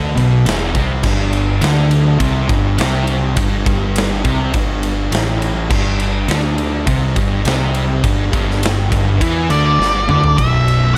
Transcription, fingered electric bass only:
0, 0, Header, 1, 2, 480
1, 0, Start_track
1, 0, Tempo, 583658
1, 856, Time_signature, 4, 2, 24, 8
1, 9027, End_track
2, 0, Start_track
2, 0, Title_t, "Fingered electric bass"
2, 0, Program_c, 0, 33
2, 0, Note_on_c, 0, 38, 95
2, 122, Note_off_c, 0, 38, 0
2, 137, Note_on_c, 0, 35, 96
2, 360, Note_off_c, 0, 35, 0
2, 377, Note_on_c, 0, 28, 96
2, 600, Note_off_c, 0, 28, 0
2, 616, Note_on_c, 0, 36, 101
2, 839, Note_off_c, 0, 36, 0
2, 853, Note_on_c, 0, 31, 87
2, 1301, Note_off_c, 0, 31, 0
2, 1328, Note_on_c, 0, 38, 97
2, 1778, Note_off_c, 0, 38, 0
2, 1809, Note_on_c, 0, 36, 100
2, 2035, Note_off_c, 0, 36, 0
2, 2050, Note_on_c, 0, 31, 103
2, 2275, Note_off_c, 0, 31, 0
2, 2290, Note_on_c, 0, 36, 94
2, 2739, Note_off_c, 0, 36, 0
2, 2770, Note_on_c, 0, 31, 89
2, 2994, Note_off_c, 0, 31, 0
2, 3016, Note_on_c, 0, 31, 99
2, 3461, Note_off_c, 0, 31, 0
2, 3491, Note_on_c, 0, 36, 92
2, 3715, Note_off_c, 0, 36, 0
2, 3734, Note_on_c, 0, 31, 91
2, 4180, Note_off_c, 0, 31, 0
2, 4209, Note_on_c, 0, 33, 94
2, 4657, Note_off_c, 0, 33, 0
2, 4693, Note_on_c, 0, 31, 89
2, 5139, Note_off_c, 0, 31, 0
2, 5166, Note_on_c, 0, 38, 99
2, 5616, Note_off_c, 0, 38, 0
2, 5650, Note_on_c, 0, 36, 91
2, 5874, Note_off_c, 0, 36, 0
2, 5893, Note_on_c, 0, 31, 96
2, 6115, Note_off_c, 0, 31, 0
2, 6126, Note_on_c, 0, 36, 92
2, 6576, Note_off_c, 0, 36, 0
2, 6612, Note_on_c, 0, 31, 89
2, 6835, Note_off_c, 0, 31, 0
2, 6850, Note_on_c, 0, 31, 91
2, 7299, Note_off_c, 0, 31, 0
2, 7333, Note_on_c, 0, 31, 98
2, 7556, Note_off_c, 0, 31, 0
2, 7573, Note_on_c, 0, 40, 94
2, 7797, Note_off_c, 0, 40, 0
2, 7809, Note_on_c, 0, 38, 103
2, 8035, Note_off_c, 0, 38, 0
2, 8050, Note_on_c, 0, 31, 98
2, 8276, Note_off_c, 0, 31, 0
2, 8289, Note_on_c, 0, 38, 95
2, 8515, Note_off_c, 0, 38, 0
2, 8538, Note_on_c, 0, 23, 83
2, 9027, Note_off_c, 0, 23, 0
2, 9027, End_track
0, 0, End_of_file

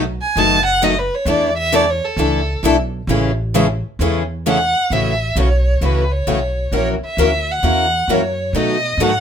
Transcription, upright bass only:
0, 0, Header, 1, 3, 480
1, 0, Start_track
1, 0, Key_signature, 3, "major"
1, 0, Tempo, 454201
1, 1341, Time_signature, 4, 2, 24, 8
1, 9725, End_track
2, 0, Start_track
2, 0, Title_t, "Upright bass"
2, 0, Program_c, 0, 32
2, 0, Note_on_c, 0, 35, 94
2, 184, Note_off_c, 0, 35, 0
2, 376, Note_on_c, 0, 30, 88
2, 1146, Note_off_c, 0, 30, 0
2, 1325, Note_on_c, 0, 40, 97
2, 2100, Note_off_c, 0, 40, 0
2, 2288, Note_on_c, 0, 37, 90
2, 2702, Note_off_c, 0, 37, 0
2, 2777, Note_on_c, 0, 35, 88
2, 3187, Note_off_c, 0, 35, 0
2, 3248, Note_on_c, 0, 33, 98
2, 4021, Note_off_c, 0, 33, 0
2, 4217, Note_on_c, 0, 40, 91
2, 4987, Note_off_c, 0, 40, 0
2, 5182, Note_on_c, 0, 33, 81
2, 5648, Note_off_c, 0, 33, 0
2, 5659, Note_on_c, 0, 35, 86
2, 6126, Note_off_c, 0, 35, 0
2, 6140, Note_on_c, 0, 37, 76
2, 6607, Note_off_c, 0, 37, 0
2, 6626, Note_on_c, 0, 35, 79
2, 7090, Note_off_c, 0, 35, 0
2, 7097, Note_on_c, 0, 34, 78
2, 7381, Note_off_c, 0, 34, 0
2, 7578, Note_on_c, 0, 38, 85
2, 8045, Note_off_c, 0, 38, 0
2, 8062, Note_on_c, 0, 40, 79
2, 8527, Note_off_c, 0, 40, 0
2, 8536, Note_on_c, 0, 42, 88
2, 9003, Note_off_c, 0, 42, 0
2, 9013, Note_on_c, 0, 47, 85
2, 9477, Note_off_c, 0, 47, 0
2, 9484, Note_on_c, 0, 44, 86
2, 9725, Note_off_c, 0, 44, 0
2, 9725, End_track
3, 0, Start_track
3, 0, Title_t, "Muted upright bass strokes"
3, 7405, Note_on_c, 9, 29, 39
3, 7510, Note_off_c, 9, 29, 0
3, 9725, End_track
0, 0, End_of_file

